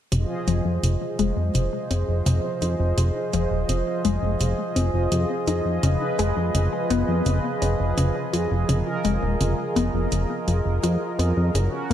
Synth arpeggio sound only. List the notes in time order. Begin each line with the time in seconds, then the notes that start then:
0.12 C3
0.48 F3
0.83 C3
1.19 G#3
1.55 C3
1.91 C4
2.26 C3
2.62 D#4
2.98 C3
3.33 F3
3.69 C3
4.05 G#3
4.40 C3
4.76 C4
5.12 C3
5.48 D#4
5.83 C#3
6.19 G#3
6.55 C#3
6.90 B3
7.26 C#3
7.62 C#4
7.97 C#3
8.33 F4
8.69 C#3
9.05 G#3
9.40 C#3
9.76 B3
10.12 C#3
10.48 F3
10.83 F4
11.19 B3
11.55 C#3